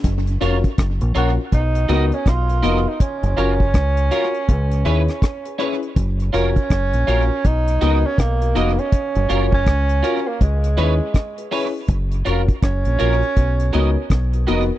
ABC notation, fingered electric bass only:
X:1
M:4/4
L:1/16
Q:"Swing 16ths" 1/4=81
K:F#
V:1 name="Fingered electric bass" clef=bass
F,,,2 E,,, z F,,, A,,, A,,, z B,,,2 C,, z B,,,2 E,,, z | z F,,, F,,,2 C,,2 z2 C,,2 D,, z4 z | F,,,2 E,,, z F,,, A,,, A,,, z B,,,2 C,, z B,,,2 E,,, z | z F,,, F,,,2 C,,2 z2 C,,2 D,, z4 z |
F,,,2 E,,, z F,,, A,,, A,,, z B,,,2 C,, z B,,,2 E,,, z |]